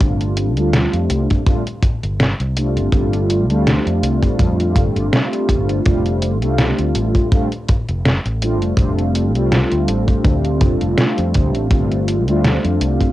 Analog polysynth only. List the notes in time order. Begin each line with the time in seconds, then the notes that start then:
0.00 G3 A3 C4 D4 F4
0.56 G3 A3 C4 D4 F4
1.46 G3 A3 C4 D4 F4
2.55 G3 A3 C4 D4 F4
2.92 G3 A3 C4 D4 F4
3.48 G3 A3 C4 D4 F4
5.85 G3 A3 C4 D4 F4
6.41 G3 A3 C4 D4 F4
7.32 G3 A3 C4 D4 F4
8.41 G3 A3 C4 D4 F4
8.78 G3 A3 C4 D4 F4
9.34 G3 A3 C4 D4 F4
11.70 G3 A3 C4 D4 F4
12.26 G3 A3 C4 D4 F4